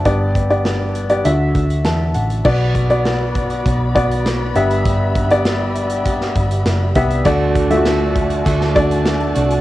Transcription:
<<
  \new Staff \with { instrumentName = "String section" } { \time 4/4 \key g \major \tempo 4 = 100 << { r1 | b''1~ | b''1 | a''1 | } \\ { r1 | <fis' d''>2.~ <fis' d''>8 <g' e''>8~ | <g' e''>1 | <fis' d''>1 | } >> }
  \new Staff \with { instrumentName = "Upright piano" } { \time 4/4 \key g \major << { a''16 r2 r8. a''8 fis''8 | r1 | r1 | r1 | } \\ { <b g' d''>8 r16 <b g' d''>8. r16 <b g' d''>16 <d' f' fis' e''>4.~ <d' f' fis' e''>16 r16 | <b fis' d''>8 r16 <b fis' d''>4. r16 <b fis' d''>4 <b g' e''>8~ | <b g' e''>8 r16 <b g' d''>4.~ <b g' d''>16 r4 <b g' e''>8 | <a fis' d''>8 r16 <a f' fis' e''>4. r16 <a fis' d''>4~ <a fis' d''>16 r16 | } >> }
  \new Staff \with { instrumentName = "Upright piano" } { \clef bass \time 4/4 \key g \major g,4. r8 d4. r8 | b,4. r2 g,8~ | g,4 r2. | d4. r2 r8 | }
  \new Staff \with { instrumentName = "Steel-string acoustic guitar" } { \time 4/4 \key g \major r1 | r1 | r1 | <d a d' fis'>4 <d a d' fis'>4 <d a d' fis'>8 <a d' fis'>4 <a d' fis'>8 | }
  \new Staff \with { instrumentName = "Picked electric bass" } { \clef bass \time 4/4 \key g \major g,,2 d,8 d,8 e,8 a,,8 | b,,2 b,,4. g,,8 | g,,2~ g,,8 g,,8 fis,,8 c,8 | d,2 d,4. c,8 | }
  \new DrumStaff \with { instrumentName = "Drums" } \drummode { \time 4/4 <hh bd>8 <hh bd>16 hh16 <hh sn>8 hh16 hh16 hh8 <hh bd>16 hh16 <hh sn>8 hh16 hh16 | <cymc bd>8 <hh bd>16 hh16 <hh sn>8 <hh bd>16 hh16 <hh bd>8 <hh bd>16 hh16 <hh sn>8 hh16 hh16 | <hh bd>8 <hh bd>16 hh16 <hh sn>8 hh16 hh16 <hh bd>16 sn16 <hh bd>16 hh16 <hh sn>8 <hh bd>16 hh16 | <hh bd>8 <hh bd>16 hh16 <hh sn>8 <hh bd>16 hh16 <hh bd>16 sn16 <hh bd>16 hh16 <hh sn>16 hh16 hh16 hh16 | }
>>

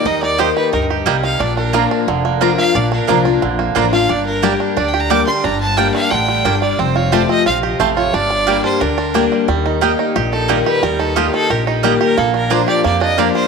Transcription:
<<
  \new Staff \with { instrumentName = "Fiddle" } { \time 4/4 \key ees \lydian \tempo 4 = 178 ees''8 d''8 c''8 b'8 bes'8 r4 f''8 | d''8 bes'4 r2 f''8 | d''8 bes'4 r2 f''8 | d''8 bes'4 r8 \tuplet 3/2 { d''8 g''8 bes''8 } d'''8 c'''8 |
bes''8 a''8 g''8 f''8 g''4. d''8 | c''8 cis''8 d''8 ees''8 f''8 r4 cis''8 | d''4. c''8 bes'4. r8 | r2 r8 a'8 bes'8 b'8 |
bes'8 a'8 f'8 a'8 bes'8 ees'8 g'8 bes'8 | a'8 bes'8 c''8 d''8 d''8 ees''8 d''8 c''8 | }
  \new Staff \with { instrumentName = "Mandolin" } { \time 4/4 \key ees \lydian r4 <bes g' ees'' g''>16 r4. r16 <bes g' ees'' g''>16 r8. | r4 <bes f' d'' bes''>16 r4. r16 <bes f' d'' bes''>16 r8. | r4 <bes f' d'' bes''>16 r4. r16 <bes f' d'' bes''>16 r8. | r4 <bes g' d'' g''>16 r4. r16 <bes g' d'' g''>16 r8. |
r4 <bes g' d'' g''>16 r4. r16 <bes g' d'' g''>16 r8. | r4 <c' f' c'' a''>16 r4. r16 <c' f' c'' a''>16 r8. | r4 <bes g' d'' g''>16 r4. r16 <bes g' d'' g''>16 r8. | r4 <bes g' ees'' g''>16 r4. r16 <bes g' ees'' g''>16 r8. |
r4 <bes g' ees'' g''>16 r4. r16 <bes g' ees'' g''>16 r8. | r4 <bes f' d'' bes''>16 r4. r16 <bes f' d'' bes''>16 r8. | }
  \new Staff \with { instrumentName = "Five-string banjo" } { \time 4/4 \key ees \lydian <g ees'>8 ees'8 g'8 ees'8 ees'8 g'8 g8 ees'8 | d'8 d'8 bes8 d'8 d8 bes8 d'8 bes8 | d'8 d'8 bes8 d'8 d8 bes8 d'8 bes8 | d'4 g'8 d'8 d'8 g'8 g8 d'8 |
d'4 g8 d'8 d8 g8 d'8 g8 | c'8 f'8 g'8 c'8 f'8 g'8 a8 f'8 | d'8 d'8 g8 d'8 d'8 d'8 d'8 g8 | g8 ees'8 g'8 ees'8 g'8 ees'8 g8 g'8 |
g8 ees'8 g'8 ees'8 g'8 ees'8 g8 g'8 | bes8 d'8 d'8 g'8 bes8 d'8 g'8 d'8 | }
  \new Staff \with { instrumentName = "Steel-string acoustic guitar" } { \time 4/4 \key ees \lydian << { r4 <ees bes ees' g'>4 r2 | r4 <f bes d' f'>4 r4 <f bes d' f'>4 | r4 <f bes d' f'>8 <d' f'>8 r4 <f bes d' f'>8 <d' f'>8 | r4 <g bes d' g'>4 r4 <g bes d' g'>8 <d' g'>8 |
r4 <g bes d' g'>4 r2 | r4 <f a c' f'>4 r2 | r4 <g bes d' g'>4 r4 <g bes d' g'>4 | r4 <ees bes ees' g'>4 r4 <ees bes ees' g'>4 |
r4 <ees bes ees' g'>4 r4 <ees bes ees' g'>4 | r4 <f bes d' f'>4 r4 <f bes d' f'>4 | } \\ { ees2 g,4 c4 | bes,2 f,2 | bes,2 f,2 | g,2 d2 |
g,2 a,4 g,4 | f,2 c4 f,4 | g,2 d2 | ees2 bes,2 |
ees2 bes,2 | bes,2 f,2 | } >> }
  \new Staff \with { instrumentName = "Upright bass" } { \clef bass \time 4/4 \key ees \lydian ees,2 d,4 c,4 | bes,,2 f,,2 | bes,,4 c,4 bes,,4 a,,4 | g,,2 d,2 |
g,,2 a,,4 g,,4 | f,,2 bes,,4 a,,4 | g,,2 d,2 | ees,2 bes,,2 |
ees,2 bes,,2 | bes,,2 f,2 | }
>>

